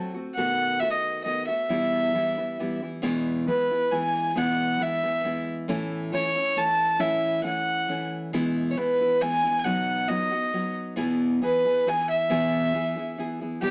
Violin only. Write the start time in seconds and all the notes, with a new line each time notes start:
0.35 F#5
0.80 E5
0.91 D#5
1.25 D#5
1.49 E5
3.48 B4
3.91 G#5
4.30 G#5
4.37 F#5
4.83 E5
6.13 C#5
6.58 A5
7.00 E5
7.44 F#5
8.70 C#5
8.77 B4
9.22 G#5
9.59 G#5
9.64 F#5
10.08 D#5
11.45 B4
11.88 G#5
12.11 E5
13.62 G4